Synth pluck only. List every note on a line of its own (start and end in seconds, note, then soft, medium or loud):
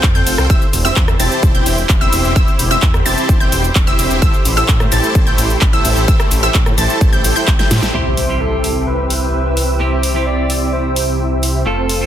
0.15 0.47 G6 loud
0.50 0.64 E6 loud
0.85 0.98 E6 loud
1.20 1.52 A6 medium
1.55 1.77 G6 medium
2.01 2.33 E6 loud
2.36 2.50 E6 loud
2.71 2.85 E6 loud
3.06 3.38 A6 loud
3.40 3.62 G6 medium
3.87 4.19 E6 loud
4.22 4.36 E6 medium
4.57 4.71 E6 loud
4.92 5.24 A6 loud
5.27 5.49 G6 medium
5.73 6.05 E6 loud
6.08 6.22 E6 loud
6.43 6.57 E6 loud
6.78 7.10 A6 medium
7.13 7.34 G6 medium
7.36 7.50 G6 medium
7.59 7.91 G6 loud